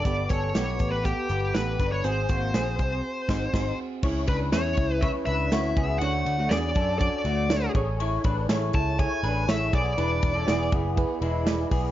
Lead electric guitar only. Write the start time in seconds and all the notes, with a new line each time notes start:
Already playing: D5
0.30 C#5
0.92 B4
1.05 G4
1.54 B4
1.92 C#5
2.04 C5
4.28 B4
4.53 C#5
5.01 E5
5.26 E5
5.99 F#5
6.49 D5
6.99 D5
8.75 A5
9.00 G#5
9.50 E5
9.75 D5